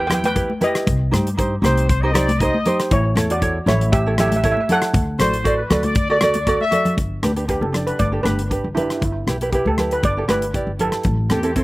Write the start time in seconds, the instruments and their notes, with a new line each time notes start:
Already playing: upright bass E2
0.07 ukulele E4 G4, steel pan G5, cross-stick, closed hi-hat, low conga
0.11 ukulele B4, steel pan G5
0.24 steel pan B4 G5, closed hi-hat, high conga
0.35 ukulele E4 G4 B4, kick, closed hi-hat
0.50 high conga
0.61 ukulele E4 G4 B4, steel pan G4 D#5, closed hi-hat, low conga
0.75 cross-stick, closed hi-hat
0.87 upright bass C2, kick, closed hi-hat
1.11 upright bass G2, ukulele D#4 G4 C5, cross-stick, closed hi-hat, high conga
1.27 closed hi-hat
1.37 ukulele D#4 G4 C5, kick, closed hi-hat
1.62 upright bass C2, ukulele D#4 G4 C5, horn section C5, cross-stick, closed hi-hat, high conga, low conga
1.77 closed hi-hat
1.88 horn section C5, kick, closed hi-hat
2.01 ukulele D#4 G4 C5, horn section D#5
2.14 ukulele D#4 G4 C5, horn section D5, cross-stick, closed hi-hat, low conga
2.28 closed hi-hat, high conga
2.39 ukulele D#4 G4 C5, horn section D#5, kick, closed hi-hat
2.54 high conga
2.66 ukulele D#4 G4 C5, closed hi-hat, low conga
2.80 cross-stick, closed hi-hat
2.91 upright bass A1, steel pan E4 C#5, kick, closed hi-hat
3.15 upright bass E2, ukulele E4 A4 C#5, cross-stick, closed hi-hat, high conga
3.30 steel pan F#4 D5, closed hi-hat
3.41 ukulele E4 A4 C#5, kick, closed hi-hat
3.66 upright bass A1, ukulele E4 A4 E5, steel pan E4 C#5, cross-stick, closed hi-hat, high conga, low conga
3.81 closed hi-hat
3.92 steel pan G4 E5, kick, closed hi-hat
4.06 ukulele E4 A4 C#5
4.18 ukulele E4 A4 C#5, steel pan G4 E5, cross-stick, closed hi-hat, low conga
4.28 steel pan E5
4.32 closed hi-hat, high conga
4.36 steel pan E5
4.44 ukulele E4 A4 C#5, steel pan E5, kick, closed hi-hat
4.52 steel pan E5
4.57 steel pan E5, high conga
4.69 ukulele E4 A4 C#5, steel pan A4 F#5, closed hi-hat, low conga
4.82 cross-stick, closed hi-hat
4.93 upright bass D2, kick, closed hi-hat
5.19 upright bass A1, ukulele F#4 A4 D5, horn section C5, cross-stick, closed hi-hat, high conga, low conga
5.34 closed hi-hat
5.44 ukulele F#4 A4 D5, kick, closed hi-hat
5.57 horn section B4
5.70 upright bass D2, ukulele F#4 A4 D5, cross-stick, closed hi-hat, high conga, low conga
5.83 horn section D5, closed hi-hat, high conga
5.95 kick, closed hi-hat
6.10 ukulele F#4 A4 D5, horn section D5
6.21 ukulele F#4 A4 D5, cross-stick, closed hi-hat, low conga
6.34 closed hi-hat, high conga
6.47 ukulele F#4 A4 D5, kick, closed hi-hat
6.61 horn section E5, high conga
6.71 ukulele F#4 A4 D5, closed hi-hat, low conga
6.85 closed hi-hat, low conga
6.97 upright bass G1, kick, closed hi-hat, low conga
7.23 upright bass D2, ukulele D4 G4 B4, cross-stick, closed hi-hat, high conga
7.36 ukulele D4 G4 B4, closed hi-hat
7.48 ukulele D4 G4 B4, steel pan G4, kick, closed hi-hat
7.61 upright bass F#1, steel pan A4, high conga
7.72 ukulele D4 G4 D5, cross-stick, closed hi-hat, low conga
7.87 steel pan B4, closed hi-hat
7.99 upright bass G1, steel pan D5, kick, closed hi-hat, high conga
8.12 ukulele D4 G4 A4
8.23 upright bass G1, ukulele D4 G4 B4, steel pan B4, cross-stick, closed hi-hat, high conga
8.39 closed hi-hat
8.50 ukulele D4 G4 B4, kick, closed hi-hat
8.64 upright bass G1
8.75 ukulele D4 G4 B4, steel pan E4, closed hi-hat, low conga
8.83 steel pan E4
8.90 steel pan E4, cross-stick, closed hi-hat
8.98 upright bass G1, steel pan E4
9.02 steel pan E4, kick, closed hi-hat, low conga
9.13 steel pan E4
9.27 upright bass B1, ukulele E4 G4 B4, cross-stick, closed hi-hat, high conga
9.41 ukulele E4 G4 B4, closed hi-hat
9.52 ukulele E4 G4 B4, steel pan G4, kick, closed hi-hat
9.65 upright bass D2, steel pan A4, high conga
9.78 ukulele E4 G4 B4, cross-stick, closed hi-hat, low conga
9.91 steel pan B4, closed hi-hat
10.03 upright bass G1, steel pan D5, kick, closed hi-hat, high conga
10.17 ukulele E4 G4 A4
10.28 upright bass G1, ukulele E4 G4 B4, steel pan B4, cross-stick, closed hi-hat, high conga
10.42 closed hi-hat
10.54 ukulele E4 G4 D5, kick, closed hi-hat
10.67 upright bass G1
10.79 ukulele E4 G4 B4, steel pan A4, closed hi-hat, low conga
10.92 cross-stick, closed hi-hat
11.04 upright bass A1, kick, closed hi-hat, low conga
11.29 upright bass E2, ukulele C4 E4 A4, horn section G4, cross-stick, closed hi-hat, high conga
11.43 ukulele C4 E4 A4, closed hi-hat
11.55 ukulele C4 E4 C5, horn section A4, kick, closed hi-hat